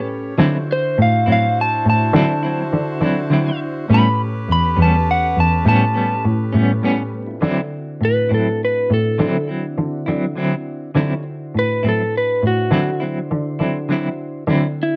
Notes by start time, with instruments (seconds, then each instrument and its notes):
Already playing: cello A2, horn section C#4 G4 C#5, tonewheel organ C#4 G4 A4 B4
0.37 clean electric guitar D3 F#3 C4 E4, cello D3, tonewheel organ D#4 F4 G4 C#5, horn section E4 F#4 C5
0.67 tonewheel organ D4 E4 F#4 C5
0.72 electric slide guitar C5
0.98 cello A2
1.02 electric slide guitar F5
1.26 cello A2, clean electric guitar F#3 C4 E4
1.32 electric slide guitar F5
1.61 electric slide guitar A5
1.86 cello A2, electric slide guitar A5
2.14 cello D3, clean electric guitar D3 F#3 C4 E4
2.43 clean electric guitar F#3 C4 E4
2.73 cello D3
3.01 cello D3, clean electric guitar F#3 C4 E4
3.30 clean electric guitar D3 F#3 C4 E4
3.88 clean electric guitar A2 G3 B3 C#4, cello A2, tonewheel organ C#4 G4 A4 B4, horn section C#4 G4 B4
3.94 electric slide guitar B5
4.48 cello E2
4.52 electric slide guitar B5
4.76 cello E2, clean electric guitar G3 B3 C#4
4.82 electric slide guitar A5
5.11 electric slide guitar F#5
5.37 cello E2, electric slide guitar A5
5.65 clean electric guitar A2 G3 B3 C#4, cello A2, electric slide guitar A5
5.94 clean electric guitar G3 B3 C#4
6.25 cello A2
6.53 cello A2, clean electric guitar G3 B3 C#4
6.82 clean electric guitar A2 G3 B3 C#4
7.12 tonewheel organ G3 A3
7.18 tonewheel organ B3 C4
7.23 tonewheel organ D4 E4
7.28 tonewheel organ F4 G4
7.35 tonewheel organ A4 B4
7.40 clean electric guitar D3 F#3 C4 E4, cello D3, tonewheel organ C4 D4 E4 F#4 C5
8.01 cello A2
8.05 electric slide guitar B4
8.29 cello A2, clean electric guitar F#3 C4 E4
8.34 electric slide guitar A4
8.65 electric slide guitar B4
8.90 cello A2, electric slide guitar A4
9.18 clean electric guitar D3 F#3 C4 E4, cello D3
9.47 clean electric guitar F#3 C4 E4
9.78 cello D3
10.06 cello D3, clean electric guitar F#3 C4 E4
10.36 clean electric guitar D3 F#3 C4 E4
10.95 clean electric guitar D3 F#3 C4 E4, cello D3, tonewheel organ D#4 F4 G4 C#5
11.23 tonewheel organ D4 E4 F#4 C5
11.55 cello A2, electric slide guitar B4
11.83 cello A2, clean electric guitar F#3 C4 E4
11.89 electric slide guitar A4
12.17 electric slide guitar B4
12.43 cello A2
12.47 electric slide guitar F#4
12.71 clean electric guitar D3 F#3 C4 E4, cello D3
13.00 clean electric guitar F#3 C4 E4
13.31 cello D3
13.59 cello D3, clean electric guitar F#3 C4 E4
13.89 clean electric guitar D3 F#3 C4 E4
14.47 cello D3, clean electric guitar D3 F#3 C4 E4, tonewheel organ C4 D4 E4 F#4
14.83 electric slide guitar E4